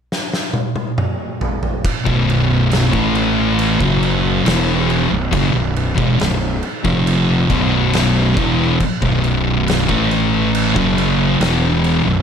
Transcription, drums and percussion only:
0.12 snare medium
0.33 snare medium
0.53 high tom medium
0.76 high tom medium
0.98 mid tom loud
1.41 floor tom loud
1.63 floor tom medium
1.85 kick loud
1.85 crash medium
2.07 kick loud
2.29 crash medium
2.71 snare loud
2.71 crash medium
2.93 kick loud
3.15 crash medium
3.59 crash medium
3.81 kick loud
4.03 crash medium
4.46 snare loud
4.46 crash medium
4.90 crash medium
5.33 kick loud
5.33 crash medium
5.76 crash medium
5.98 kick loud
6.20 snare loud
6.20 crash medium
6.63 crash medium
6.85 kick loud
7.07 crash medium
7.50 kick loud
7.50 crash medium
7.93 snare loud
7.93 crash medium
8.37 kick loud
8.37 crash medium
8.80 kick loud
8.80 crash medium
9.02 kick loud
9.24 crash medium
9.68 snare loud
9.68 crash medium
9.89 kick loud
10.11 crash medium
10.55 crash medium
10.76 kick loud
10.98 crash medium
11.41 snare loud
11.41 crash medium
11.84 crash medium

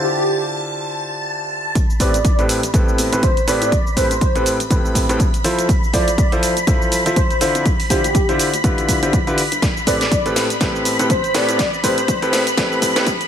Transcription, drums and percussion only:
1.75 kick loud
1.75 closed hi-hat medium
1.75 cabasa soft
1.90 cabasa soft
2.00 kick medium
2.00 open hi-hat loud
2.00 cabasa medium
2.14 closed hi-hat soft
2.14 cabasa soft
2.25 kick loud
2.25 closed hi-hat medium
2.25 cabasa soft
2.39 closed hi-hat soft
2.39 cabasa soft
2.49 open hi-hat loud
2.49 cabasa medium
2.63 closed hi-hat soft
2.63 cabasa soft
2.74 kick loud
2.74 closed hi-hat medium
2.74 cabasa soft
2.89 cabasa soft
2.98 open hi-hat medium
2.98 cabasa medium
3.13 closed hi-hat soft
3.13 cabasa soft
3.23 kick loud
3.23 closed hi-hat medium
3.23 cabasa soft
3.37 closed hi-hat soft
3.37 cabasa soft
3.48 open hi-hat medium
3.48 cabasa medium
3.62 closed hi-hat medium
3.62 cabasa soft
3.72 kick loud
3.72 closed hi-hat medium
3.72 cabasa soft
3.87 cabasa soft
3.97 kick medium
3.97 open hi-hat loud
3.97 cabasa medium
4.11 closed hi-hat soft
4.11 cabasa soft
4.21 kick loud
4.21 closed hi-hat medium
4.21 cabasa soft
4.35 closed hi-hat soft
4.35 cabasa soft
4.46 open hi-hat medium
4.46 cabasa medium
4.60 closed hi-hat medium
4.60 cabasa soft
4.71 kick loud
4.71 closed hi-hat medium
4.71 cabasa soft
4.85 cabasa soft
4.95 kick medium
4.95 open hi-hat loud
4.95 cabasa medium
5.09 closed hi-hat soft
5.09 cabasa soft
5.20 kick loud
5.20 closed hi-hat medium
5.20 cabasa soft
5.34 closed hi-hat soft
5.34 cabasa soft
5.44 open hi-hat loud
5.44 cabasa medium
5.59 closed hi-hat medium
5.59 cabasa soft
5.69 kick loud
5.69 closed hi-hat medium
5.69 cabasa soft
5.84 cabasa soft
5.93 kick medium
5.93 open hi-hat loud
5.93 cabasa medium
6.08 closed hi-hat soft
6.08 cabasa soft
6.18 kick loud
6.18 closed hi-hat medium
6.18 cabasa soft
6.32 closed hi-hat soft
6.32 cabasa soft
6.43 open hi-hat loud
6.43 cabasa medium
6.57 closed hi-hat soft
6.57 cabasa soft
6.67 kick loud
6.67 closed hi-hat medium
6.67 cabasa soft
6.82 cabasa soft
6.92 open hi-hat loud
6.92 cabasa medium
7.06 closed hi-hat soft
7.06 cabasa soft
7.16 kick loud
7.16 closed hi-hat medium
7.16 cabasa soft
7.30 closed hi-hat soft
7.30 cabasa soft
7.41 open hi-hat loud
7.41 cabasa medium
7.55 closed hi-hat medium
7.55 cabasa soft
7.66 kick loud
7.66 closed hi-hat medium
7.66 cabasa soft
7.80 open hi-hat medium
7.80 cabasa soft
7.90 kick medium
7.90 open hi-hat loud
7.90 cabasa medium
8.04 closed hi-hat soft
8.04 cabasa soft
8.15 kick loud
8.15 closed hi-hat medium
8.15 cabasa soft
8.29 closed hi-hat soft
8.29 cabasa soft
8.39 open hi-hat loud
8.39 cabasa medium
8.54 closed hi-hat soft
8.54 cabasa soft
8.64 kick loud
8.64 closed hi-hat medium
8.64 cabasa soft
8.78 closed hi-hat soft
8.78 cabasa soft
8.89 kick medium
8.89 open hi-hat loud
8.89 cabasa medium
9.03 closed hi-hat soft
9.03 cabasa soft
9.13 kick loud
9.13 closed hi-hat medium
9.13 cabasa soft
9.27 closed hi-hat soft
9.27 cabasa soft
9.38 open hi-hat loud
9.38 cabasa medium
9.52 closed hi-hat soft
9.52 cabasa soft
9.62 kick loud
9.62 snare soft
9.62 closed hi-hat medium
9.62 cabasa soft
9.77 cabasa soft
9.87 kick medium
9.87 open hi-hat loud
9.87 cabasa medium
10.01 snare soft
10.01 closed hi-hat soft
10.01 cabasa soft
10.12 kick loud
10.12 closed hi-hat medium
10.12 cabasa soft
10.26 closed hi-hat soft
10.26 cabasa soft
10.36 snare soft
10.36 open hi-hat loud
10.36 cabasa medium
10.50 closed hi-hat soft
10.50 cabasa soft
10.61 kick loud
10.61 snare medium
10.61 closed hi-hat medium
10.61 cabasa soft
10.75 cabasa soft
10.85 open hi-hat loud
10.85 cabasa medium
10.99 closed hi-hat soft
10.99 cabasa soft
11.10 kick loud
11.10 closed hi-hat medium
11.10 cabasa soft
11.24 closed hi-hat soft
11.24 cabasa soft
11.34 snare medium
11.34 open hi-hat loud
11.34 cabasa medium
11.49 closed hi-hat soft
11.49 cabasa soft
11.59 kick loud
11.59 snare medium
11.59 closed hi-hat medium
11.59 cabasa soft
11.74 cabasa soft
11.84 kick medium
11.84 open hi-hat loud
11.84 cabasa medium
11.98 closed hi-hat medium
11.98 cabasa soft
12.08 kick loud
12.08 closed hi-hat medium
12.08 cabasa soft
12.22 closed hi-hat soft
12.22 cabasa soft
12.33 snare medium
12.33 open hi-hat medium
12.33 cabasa medium
12.47 closed hi-hat medium
12.47 cabasa soft
12.57 kick loud
12.57 snare medium
12.57 closed hi-hat medium
12.57 cabasa soft
12.72 cabasa soft
12.82 kick medium
12.82 open hi-hat loud
12.82 cabasa medium
12.96 snare medium
12.96 closed hi-hat medium
12.96 cabasa soft
13.07 kick loud
13.07 closed hi-hat medium
13.07 cabasa soft
13.21 closed hi-hat soft
13.21 cabasa soft

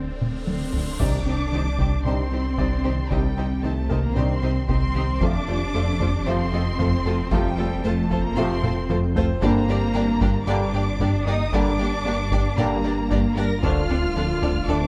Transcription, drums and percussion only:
0.21 taiko mid medium
0.47 taiko high medium
0.73 taiko low medium
1.00 taiko medium
1.79 taiko medium
2.05 taiko mid medium
2.58 taiko medium
3.11 taiko medium
3.90 taiko medium
4.16 taiko mid medium
4.69 taiko medium
5.21 taiko medium
6.00 taiko medium
6.26 taiko mid medium
6.79 taiko medium
7.31 taiko medium
8.10 taiko medium
8.37 taiko mid medium
8.63 taiko mid medium
8.89 taiko low-mid loud
9.16 taiko low medium
9.42 taiko loud
10.21 taiko medium
10.47 taiko mid medium
11.00 taiko medium
11.53 taiko medium
12.32 taiko medium
12.58 taiko mid medium
13.11 taiko medium
13.63 taiko loud
14.42 taiko medium
14.69 taiko mid medium

